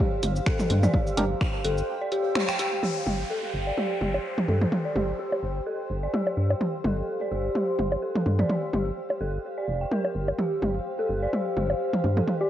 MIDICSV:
0, 0, Header, 1, 8, 480
1, 0, Start_track
1, 0, Tempo, 472441
1, 954, Time_signature, 4, 2, 24, 8
1, 12699, End_track
2, 0, Start_track
2, 0, Title_t, "Ambient pad"
2, 0, Program_c, 0, 92
2, 0, Note_on_c, 0, 67, 87
2, 0, Note_on_c, 0, 72, 91
2, 0, Note_on_c, 0, 77, 79
2, 0, Note_on_c, 0, 79, 85
2, 2861, Note_off_c, 0, 67, 0
2, 2873, Note_off_c, 0, 72, 0
2, 2873, Note_off_c, 0, 77, 0
2, 2873, Note_on_c, 0, 67, 71
2, 2900, Note_off_c, 0, 79, 0
2, 2997, Note_on_c, 0, 72, 79
2, 4070, Note_on_c, 0, 77, 76
2, 12699, Note_off_c, 0, 67, 0
2, 12699, Note_off_c, 0, 72, 0
2, 12699, Note_off_c, 0, 77, 0
2, 12699, End_track
3, 0, Start_track
3, 0, Title_t, "Synth bell"
3, 0, Program_c, 1, 98
3, 474, Note_on_c, 1, 69, 78
3, 536, Note_off_c, 1, 69, 0
3, 848, Note_on_c, 1, 74, 73
3, 897, Note_off_c, 1, 74, 0
3, 954, Note_on_c, 1, 67, 81
3, 991, Note_off_c, 1, 67, 0
3, 1194, Note_on_c, 1, 67, 76
3, 1231, Note_off_c, 1, 67, 0
3, 1674, Note_on_c, 1, 69, 76
3, 1736, Note_off_c, 1, 69, 0
3, 2048, Note_on_c, 1, 74, 74
3, 2097, Note_off_c, 1, 74, 0
3, 2154, Note_on_c, 1, 67, 105
3, 2191, Note_off_c, 1, 67, 0
3, 2394, Note_on_c, 1, 67, 97
3, 2456, Note_off_c, 1, 67, 0
3, 2528, Note_on_c, 1, 79, 106
3, 2601, Note_off_c, 1, 79, 0
3, 2633, Note_on_c, 1, 67, 98
3, 2695, Note_off_c, 1, 67, 0
3, 2874, Note_on_c, 1, 67, 75
3, 2911, Note_off_c, 1, 67, 0
3, 3354, Note_on_c, 1, 69, 74
3, 3416, Note_off_c, 1, 69, 0
3, 3727, Note_on_c, 1, 74, 69
3, 3777, Note_off_c, 1, 74, 0
3, 3834, Note_on_c, 1, 67, 70
3, 3871, Note_off_c, 1, 67, 0
3, 4074, Note_on_c, 1, 67, 70
3, 4111, Note_off_c, 1, 67, 0
3, 4554, Note_on_c, 1, 69, 67
3, 4616, Note_off_c, 1, 69, 0
3, 4927, Note_on_c, 1, 74, 66
3, 4977, Note_off_c, 1, 74, 0
3, 5034, Note_on_c, 1, 67, 67
3, 5071, Note_off_c, 1, 67, 0
3, 5273, Note_on_c, 1, 67, 78
3, 5311, Note_off_c, 1, 67, 0
3, 5754, Note_on_c, 1, 69, 75
3, 5816, Note_off_c, 1, 69, 0
3, 6127, Note_on_c, 1, 74, 69
3, 6176, Note_off_c, 1, 74, 0
3, 6234, Note_on_c, 1, 67, 75
3, 6271, Note_off_c, 1, 67, 0
3, 6473, Note_on_c, 1, 67, 70
3, 6511, Note_off_c, 1, 67, 0
3, 6954, Note_on_c, 1, 69, 69
3, 7016, Note_off_c, 1, 69, 0
3, 7328, Note_on_c, 1, 74, 70
3, 7377, Note_off_c, 1, 74, 0
3, 7434, Note_on_c, 1, 67, 68
3, 7471, Note_off_c, 1, 67, 0
3, 7673, Note_on_c, 1, 67, 72
3, 7710, Note_off_c, 1, 67, 0
3, 8153, Note_on_c, 1, 69, 71
3, 8215, Note_off_c, 1, 69, 0
3, 8528, Note_on_c, 1, 74, 69
3, 8577, Note_off_c, 1, 74, 0
3, 8633, Note_on_c, 1, 67, 73
3, 8671, Note_off_c, 1, 67, 0
3, 8875, Note_on_c, 1, 67, 67
3, 8911, Note_off_c, 1, 67, 0
3, 9354, Note_on_c, 1, 69, 66
3, 9416, Note_off_c, 1, 69, 0
3, 9728, Note_on_c, 1, 74, 71
3, 9777, Note_off_c, 1, 74, 0
3, 9968, Note_on_c, 1, 79, 67
3, 10017, Note_off_c, 1, 79, 0
3, 10075, Note_on_c, 1, 70, 74
3, 10136, Note_off_c, 1, 70, 0
3, 10555, Note_on_c, 1, 67, 75
3, 10591, Note_off_c, 1, 67, 0
3, 11168, Note_on_c, 1, 69, 72
3, 11217, Note_off_c, 1, 69, 0
3, 11408, Note_on_c, 1, 74, 69
3, 11457, Note_off_c, 1, 74, 0
3, 11515, Note_on_c, 1, 67, 71
3, 11551, Note_off_c, 1, 67, 0
3, 11755, Note_on_c, 1, 67, 72
3, 11792, Note_off_c, 1, 67, 0
3, 12368, Note_on_c, 1, 69, 67
3, 12417, Note_off_c, 1, 69, 0
3, 12607, Note_on_c, 1, 74, 67
3, 12657, Note_off_c, 1, 74, 0
3, 12699, End_track
4, 0, Start_track
4, 0, Title_t, "Soft synth lead"
4, 0, Program_c, 2, 80
4, 12608, Note_on_c, 2, 67, 81
4, 12676, Note_off_c, 2, 67, 0
4, 12699, End_track
5, 0, Start_track
5, 0, Title_t, "Synth stab"
5, 0, Program_c, 3, 62
5, 1194, Note_on_c, 3, 62, 76
5, 1194, Note_on_c, 3, 67, 70
5, 1194, Note_on_c, 3, 70, 85
5, 1269, Note_off_c, 3, 62, 0
5, 1269, Note_off_c, 3, 67, 0
5, 1269, Note_off_c, 3, 70, 0
5, 12699, End_track
6, 0, Start_track
6, 0, Title_t, "Analog synth bass"
6, 0, Program_c, 4, 38
6, 233, Note_on_c, 4, 31, 106
6, 411, Note_off_c, 4, 31, 0
6, 714, Note_on_c, 4, 43, 93
6, 891, Note_off_c, 4, 43, 0
6, 1194, Note_on_c, 4, 31, 100
6, 1371, Note_off_c, 4, 31, 0
6, 1673, Note_on_c, 4, 31, 84
6, 1851, Note_off_c, 4, 31, 0
6, 3114, Note_on_c, 4, 31, 91
6, 3291, Note_off_c, 4, 31, 0
6, 3594, Note_on_c, 4, 31, 80
6, 3771, Note_off_c, 4, 31, 0
6, 4073, Note_on_c, 4, 31, 99
6, 4251, Note_off_c, 4, 31, 0
6, 4553, Note_on_c, 4, 43, 86
6, 4730, Note_off_c, 4, 43, 0
6, 5033, Note_on_c, 4, 31, 97
6, 5211, Note_off_c, 4, 31, 0
6, 5514, Note_on_c, 4, 31, 81
6, 5691, Note_off_c, 4, 31, 0
6, 5994, Note_on_c, 4, 31, 97
6, 6171, Note_off_c, 4, 31, 0
6, 6474, Note_on_c, 4, 43, 87
6, 6651, Note_off_c, 4, 43, 0
6, 6955, Note_on_c, 4, 31, 95
6, 7131, Note_off_c, 4, 31, 0
6, 7434, Note_on_c, 4, 31, 83
6, 7611, Note_off_c, 4, 31, 0
6, 7915, Note_on_c, 4, 31, 101
6, 8092, Note_off_c, 4, 31, 0
6, 8394, Note_on_c, 4, 43, 88
6, 8571, Note_off_c, 4, 43, 0
6, 8874, Note_on_c, 4, 31, 91
6, 9051, Note_off_c, 4, 31, 0
6, 9354, Note_on_c, 4, 31, 82
6, 9531, Note_off_c, 4, 31, 0
6, 9834, Note_on_c, 4, 29, 85
6, 10011, Note_off_c, 4, 29, 0
6, 10313, Note_on_c, 4, 31, 74
6, 10491, Note_off_c, 4, 31, 0
6, 10793, Note_on_c, 4, 31, 96
6, 10971, Note_off_c, 4, 31, 0
6, 11274, Note_on_c, 4, 31, 81
6, 11451, Note_off_c, 4, 31, 0
6, 11753, Note_on_c, 4, 31, 100
6, 11931, Note_off_c, 4, 31, 0
6, 12233, Note_on_c, 4, 43, 89
6, 12411, Note_off_c, 4, 43, 0
6, 12699, End_track
7, 0, Start_track
7, 0, Title_t, "Downlifter"
7, 0, Program_c, 5, 103
7, 2874, Note_on_c, 5, 60, 65
7, 6714, Note_off_c, 5, 60, 0
7, 12699, End_track
8, 0, Start_track
8, 0, Title_t, "Drums"
8, 233, Note_on_c, 9, 42, 87
8, 233, Note_on_c, 9, 69, 32
8, 234, Note_on_c, 9, 48, 54
8, 335, Note_off_c, 9, 42, 0
8, 335, Note_off_c, 9, 48, 0
8, 335, Note_off_c, 9, 69, 0
8, 367, Note_on_c, 9, 69, 33
8, 468, Note_off_c, 9, 69, 0
8, 473, Note_on_c, 9, 26, 91
8, 474, Note_on_c, 9, 36, 116
8, 575, Note_off_c, 9, 26, 0
8, 575, Note_off_c, 9, 36, 0
8, 608, Note_on_c, 9, 47, 75
8, 608, Note_on_c, 9, 69, 44
8, 709, Note_off_c, 9, 47, 0
8, 709, Note_off_c, 9, 69, 0
8, 713, Note_on_c, 9, 48, 52
8, 714, Note_on_c, 9, 42, 86
8, 815, Note_off_c, 9, 42, 0
8, 815, Note_off_c, 9, 48, 0
8, 848, Note_on_c, 9, 47, 82
8, 848, Note_on_c, 9, 69, 45
8, 949, Note_off_c, 9, 47, 0
8, 949, Note_off_c, 9, 69, 0
8, 954, Note_on_c, 9, 36, 114
8, 954, Note_on_c, 9, 47, 75
8, 1056, Note_off_c, 9, 36, 0
8, 1056, Note_off_c, 9, 47, 0
8, 1088, Note_on_c, 9, 69, 32
8, 1189, Note_off_c, 9, 69, 0
8, 1194, Note_on_c, 9, 42, 94
8, 1195, Note_on_c, 9, 48, 76
8, 1296, Note_off_c, 9, 42, 0
8, 1296, Note_off_c, 9, 48, 0
8, 1434, Note_on_c, 9, 26, 96
8, 1434, Note_on_c, 9, 36, 114
8, 1434, Note_on_c, 9, 69, 32
8, 1536, Note_off_c, 9, 26, 0
8, 1536, Note_off_c, 9, 36, 0
8, 1536, Note_off_c, 9, 69, 0
8, 1673, Note_on_c, 9, 42, 88
8, 1775, Note_off_c, 9, 42, 0
8, 1807, Note_on_c, 9, 69, 30
8, 1908, Note_off_c, 9, 69, 0
8, 2153, Note_on_c, 9, 42, 89
8, 2153, Note_on_c, 9, 69, 35
8, 2254, Note_off_c, 9, 42, 0
8, 2254, Note_off_c, 9, 69, 0
8, 2393, Note_on_c, 9, 26, 94
8, 2394, Note_on_c, 9, 48, 79
8, 2494, Note_off_c, 9, 26, 0
8, 2496, Note_off_c, 9, 48, 0
8, 2527, Note_on_c, 9, 26, 62
8, 2527, Note_on_c, 9, 69, 46
8, 2628, Note_off_c, 9, 26, 0
8, 2628, Note_off_c, 9, 69, 0
8, 2633, Note_on_c, 9, 42, 89
8, 2633, Note_on_c, 9, 69, 51
8, 2735, Note_off_c, 9, 42, 0
8, 2735, Note_off_c, 9, 69, 0
8, 2874, Note_on_c, 9, 47, 70
8, 2976, Note_off_c, 9, 47, 0
8, 3115, Note_on_c, 9, 48, 72
8, 3216, Note_off_c, 9, 48, 0
8, 3834, Note_on_c, 9, 48, 64
8, 3936, Note_off_c, 9, 48, 0
8, 4074, Note_on_c, 9, 48, 53
8, 4175, Note_off_c, 9, 48, 0
8, 4207, Note_on_c, 9, 60, 58
8, 4309, Note_off_c, 9, 60, 0
8, 4447, Note_on_c, 9, 47, 73
8, 4549, Note_off_c, 9, 47, 0
8, 4553, Note_on_c, 9, 48, 51
8, 4655, Note_off_c, 9, 48, 0
8, 4687, Note_on_c, 9, 47, 81
8, 4789, Note_off_c, 9, 47, 0
8, 4794, Note_on_c, 9, 47, 73
8, 4896, Note_off_c, 9, 47, 0
8, 5034, Note_on_c, 9, 48, 72
8, 5136, Note_off_c, 9, 48, 0
8, 5408, Note_on_c, 9, 60, 63
8, 5510, Note_off_c, 9, 60, 0
8, 6235, Note_on_c, 9, 48, 78
8, 6336, Note_off_c, 9, 48, 0
8, 6368, Note_on_c, 9, 60, 59
8, 6470, Note_off_c, 9, 60, 0
8, 6608, Note_on_c, 9, 60, 62
8, 6710, Note_off_c, 9, 60, 0
8, 6714, Note_on_c, 9, 47, 72
8, 6815, Note_off_c, 9, 47, 0
8, 6953, Note_on_c, 9, 48, 78
8, 7055, Note_off_c, 9, 48, 0
8, 7673, Note_on_c, 9, 48, 65
8, 7775, Note_off_c, 9, 48, 0
8, 7913, Note_on_c, 9, 48, 54
8, 8015, Note_off_c, 9, 48, 0
8, 8047, Note_on_c, 9, 60, 57
8, 8149, Note_off_c, 9, 60, 0
8, 8287, Note_on_c, 9, 47, 73
8, 8389, Note_off_c, 9, 47, 0
8, 8393, Note_on_c, 9, 48, 53
8, 8494, Note_off_c, 9, 48, 0
8, 8526, Note_on_c, 9, 47, 78
8, 8628, Note_off_c, 9, 47, 0
8, 8632, Note_on_c, 9, 47, 71
8, 8734, Note_off_c, 9, 47, 0
8, 8874, Note_on_c, 9, 48, 75
8, 8975, Note_off_c, 9, 48, 0
8, 9247, Note_on_c, 9, 60, 58
8, 9349, Note_off_c, 9, 60, 0
8, 10073, Note_on_c, 9, 48, 76
8, 10175, Note_off_c, 9, 48, 0
8, 10206, Note_on_c, 9, 60, 58
8, 10308, Note_off_c, 9, 60, 0
8, 10447, Note_on_c, 9, 60, 58
8, 10549, Note_off_c, 9, 60, 0
8, 10553, Note_on_c, 9, 47, 67
8, 10654, Note_off_c, 9, 47, 0
8, 10794, Note_on_c, 9, 48, 72
8, 10895, Note_off_c, 9, 48, 0
8, 11513, Note_on_c, 9, 48, 65
8, 11615, Note_off_c, 9, 48, 0
8, 11753, Note_on_c, 9, 48, 52
8, 11854, Note_off_c, 9, 48, 0
8, 11886, Note_on_c, 9, 60, 56
8, 11987, Note_off_c, 9, 60, 0
8, 12126, Note_on_c, 9, 47, 70
8, 12228, Note_off_c, 9, 47, 0
8, 12234, Note_on_c, 9, 48, 51
8, 12335, Note_off_c, 9, 48, 0
8, 12366, Note_on_c, 9, 47, 76
8, 12468, Note_off_c, 9, 47, 0
8, 12473, Note_on_c, 9, 47, 68
8, 12575, Note_off_c, 9, 47, 0
8, 12699, End_track
0, 0, End_of_file